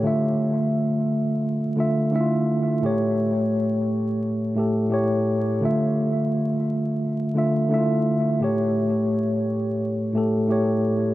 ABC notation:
X:1
M:4/4
L:1/8
Q:"Swing 16ths" 1/4=86
K:Dm
V:1 name="Tine electric piano"
[D,A,Fe]4 z [D,A,Fe] [D,A,EFe]2 | [A,,A,G^c]4 z [A,,A,GA] [A,,A,Gc]2 | [D,A,Fe]4 z [D,A,Fe] [D,A,EFe]2 | [A,,A,G^c]4 z [A,,A,GA] [A,,A,Gc]2 |]